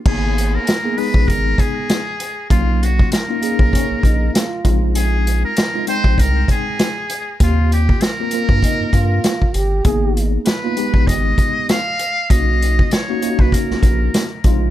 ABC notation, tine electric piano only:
X:1
M:4/4
L:1/16
Q:"Swing 16ths" 1/4=98
K:Ablyd
V:1 name="Tine electric piano"
[B,_CEA]4 z [B,CEA] [A,CEA]6- [A,CEA] z3 | [^F,^A,^C^D]4 z [A,CD=F] [A,CD_A]6- [^A,CD_A] z [_A,=CEF]2- | [A,CEF]4 z [A,CEF] [A,CEg]6- [A,CEg] z3 | [B,CFG]4 z [B,CFB] [B,CFB]6- [B,CFB] z3 |
[B,_CEA]4 z [B,CEF] [A,CEG]6- [A,CEG] z3 | [^A,^C^D^F]4 z [A,CDF] [A,CD=F^F]6- [A,CD=F^F] z [_A,=CE=F]2 |]